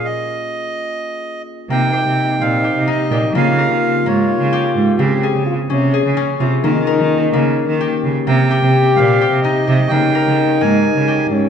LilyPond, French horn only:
\new Staff \with { instrumentName = "French horn" } { \time 7/8 \key c \phrygian \tempo 4 = 128 r2. r8 | ees'2.~ ees'8 | f'2.~ f'8 | g'4 f'8 des'4. r8 |
ees'2. r8 | g'2.~ g'8 | ees'2. des'8 | }